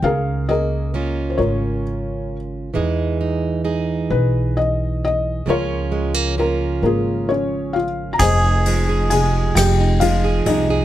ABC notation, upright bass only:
X:1
M:6/8
L:1/8
Q:3/8=44
K:Dblyd
V:1 name="Upright bass" clef=bass
D,,3 A,,,3 | =E,,3 =B,,,3 | D,,3 A,,,3 | F,,,3 F,,,2 C,, |]